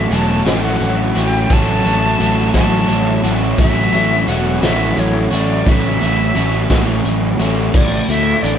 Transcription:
Already playing: A2 F#3 A3 C#4 F#4 E5 A5
0.10 E1 F#3 A3 C#4 F#4 A5, closed hi-hat, maracas
0.45 A1 A2 F#3 A3 C#4 F#4 F#5, snare, closed hi-hat, maracas
0.63 maracas
0.81 A1, closed hi-hat
0.98 maracas
1.15 A1 A3 C#4 F#4 G5, closed hi-hat
1.50 A1 A2 F#3 A3 C#4 F#4 A5, kick, closed hi-hat, maracas
1.85 A1 A3 C#4 F#4, closed hi-hat
2.19 A1 F#3 A3 C#4 F#4, closed hi-hat, maracas
2.53 A1 A2 F#3 A3 C#4 F#4, kick, snare, closed hi-hat, maracas
2.57 A5
2.71 maracas
2.88 A1, closed hi-hat
3.06 maracas
3.23 A1 C#4 F#4, closed hi-hat
3.27 A3
3.57 A1 A2 F#3 A3 C#4 F#4 E5, kick, closed hi-hat, maracas
3.93 A1 A3 C#4 F#4, closed hi-hat
4.27 E1 F#3 A3 C#4 F#4 F#5, closed hi-hat, maracas
4.62 A1 A2 F#3 A3 C#4 F#4 E5, snare, closed hi-hat, maracas
4.79 maracas
4.96 A1 C#5, closed hi-hat
5.15 maracas
5.31 A1 A3 C#4 F#4 D5, closed hi-hat
5.66 A1 A2 F#3 A3 C#4 F#4 E5, kick, closed hi-hat, maracas
6.01 A1 A3 C#4 F#4, closed hi-hat, maracas
6.35 A1 F#3 A3 C#4 F#4, closed hi-hat
6.54 maracas
6.70 A1 A2 F#3 A3 C#4 F#4, kick, snare, closed hi-hat, maracas
7.04 A1, closed hi-hat
7.38 A1 A3 C#4 F#4, closed hi-hat, maracas
7.57 maracas
7.74 A1 A2 D5, kick, crash, maracas
7.91 maracas
8.09 D2 A3 E5, closed hi-hat
8.43 A1 D4 D5, closed hi-hat

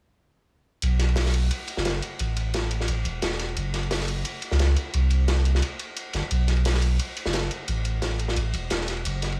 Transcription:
0.82 B1, closed hi-hat, ride
0.99 snare, closed hi-hat, ride
1.08 ride
1.16 snare, closed hi-hat, open hi-hat
1.26 snare
1.34 closed hi-hat, ride
1.51 closed hi-hat, ride
1.67 closed hi-hat, ride
1.77 F#1, snare
1.85 snare, closed hi-hat, ride
2.02 closed hi-hat, ride
2.19 A1, closed hi-hat, ride
2.37 closed hi-hat, ride
2.54 snare, closed hi-hat, ride
2.63 ride
2.71 closed hi-hat, ride
2.80 snare
2.88 A1, closed hi-hat, ride
3.05 E1, closed hi-hat, ride
3.22 E1, snare, closed hi-hat, ride
3.32 snare
3.39 snare, closed hi-hat, ride
3.49 ride
3.57 F#1, closed hi-hat, ride
3.74 snare, closed hi-hat, ride
3.83 ride
3.91 snare, closed hi-hat, open hi-hat
4.00 snare
4.08 closed hi-hat, ride
4.25 closed hi-hat, ride
4.42 closed hi-hat, ride
4.51 C#2, snare
4.59 snare, closed hi-hat, ride
4.76 closed hi-hat, ride
4.94 C2, closed hi-hat, ride
5.10 closed hi-hat, ride
5.28 snare, closed hi-hat, ride
5.36 ride
5.45 closed hi-hat, ride
5.55 snare
5.62 closed hi-hat, ride
5.79 closed hi-hat, ride
5.97 closed hi-hat, ride
6.13 G1, snare, closed hi-hat, ride
6.22 ride
6.31 B1, closed hi-hat, ride
6.48 snare, closed hi-hat, ride
6.57 ride
6.65 snare, closed hi-hat, open hi-hat
6.74 snare
6.81 closed hi-hat, ride
6.99 closed hi-hat, ride
7.17 closed hi-hat, ride
7.25 F#1, snare
7.33 snare, closed hi-hat, ride
7.51 closed hi-hat, ride
7.68 A1, closed hi-hat, ride
7.85 closed hi-hat, ride
8.02 snare, closed hi-hat, ride
8.11 ride
8.19 closed hi-hat, ride
8.28 snare
8.36 A1, closed hi-hat, ride
8.54 E1, closed hi-hat, ride
8.70 E1, snare, closed hi-hat, ride
8.81 snare
8.88 snare, closed hi-hat, ride
8.97 ride
9.05 F#1, closed hi-hat, ride
9.22 snare, closed hi-hat, ride
9.32 ride

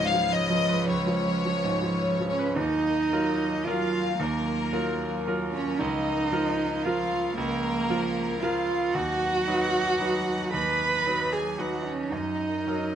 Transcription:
Already playing: C#2 G#2 F3 G#3 C#4 F4 B4
0.05 F5
0.14 F3
0.32 C#4 D#5
0.50 F3
0.68 B4
0.87 C#2 C#5
1.07 F3
1.26 C#4
1.45 F3
1.64 G#2
1.82 F3
2.02 C#4
2.20 F3
2.28 C#4 C#5
2.39 B4
2.56 D#2 F#3 D#4 F4 A#4 D#5
3.12 F#3 F4 A#4
3.66 F#3 F4 A#4 F5
4.18 D#2 A#3 A#4
4.73 F#3 F4 A#4
5.26 F#3 F4 A#4
5.52 C#4 C#5
5.79 C#2 F3 D#4 D#5
6.32 F3 F4 A#4
6.84 F3 F4 A#4 F5
7.37 C#2 A#3 A#4
7.90 F3 F4 A#4
8.41 F3 F4 A#4 F5
8.94 D#2 F#3 D#4 F#4 B4 F#5
9.47 F#3 D#4 B4
9.99 F#3 D#4 B4
10.53 D#2 B4 B5
11.06 F#3 D#4 B4
11.32 G#4 G#5
11.58 F#3 D#4 F#4 B4 F#5
11.84 C#4 C#5
12.09 F#2 C#4 D#4 A#4
12.14 D#5
12.67 F#3 C#4 A#4

